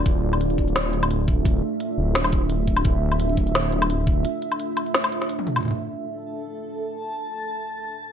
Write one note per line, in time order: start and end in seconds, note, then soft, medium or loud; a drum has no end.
0.00 5.60 A3 medium
0.00 5.60 D4 medium
0.00 5.60 F4 medium
0.05 0.57 D1 loud
0.05 5.62 E5 loud
0.05 kick loud
0.05 closed hi-hat medium
0.33 low woodblock soft
0.41 closed hi-hat medium
0.50 open hi-hat soft
0.58 1.62 D1 loud
0.58 kick medium
0.68 open hi-hat soft
0.76 snare loud
0.76 closed hi-hat medium
0.93 closed hi-hat soft
1.03 open hi-hat soft
1.03 low woodblock medium
1.11 closed hi-hat medium
1.28 kick loud
1.45 kick loud
1.45 closed hi-hat medium
1.80 closed hi-hat medium
1.98 2.84 D1 loud
2.15 snare loud
2.15 closed hi-hat medium
2.24 low woodblock medium
2.32 kick loud
2.32 open hi-hat medium
2.50 closed hi-hat medium
2.68 kick medium
2.77 low woodblock medium
2.85 3.36 D1 loud
2.85 kick loud
2.85 closed hi-hat medium
3.12 low woodblock soft
3.20 closed hi-hat medium
3.30 open hi-hat soft
3.37 4.24 D1 loud
3.37 kick medium
3.47 open hi-hat soft
3.55 snare loud
3.55 closed hi-hat medium
3.72 closed hi-hat soft
3.82 open hi-hat soft
3.82 low woodblock medium
3.90 closed hi-hat medium
4.07 kick loud
4.25 closed hi-hat medium
4.42 closed hi-hat soft
4.52 low woodblock soft
4.60 closed hi-hat medium
4.77 closed hi-hat soft
4.77 low woodblock soft
4.86 open hi-hat soft
4.94 snare loud
4.94 closed hi-hat medium
5.04 low woodblock medium
5.12 open hi-hat medium
5.22 snare soft
5.29 closed hi-hat medium
5.39 high tom medium
5.47 open hi-hat soft
5.47 mid tom medium
5.56 mid tom soft
5.56 low woodblock medium
5.59 mid tom soft
5.61 mid tom soft
5.63 8.12 A3 medium
5.63 8.12 D4 medium
5.63 8.12 F4 medium
5.63 8.12 A4 medium
5.63 8.12 D5 medium
5.63 8.12 A5 medium
5.63 mid tom medium
5.65 mid tom medium
5.68 mid tom medium
5.71 mid tom medium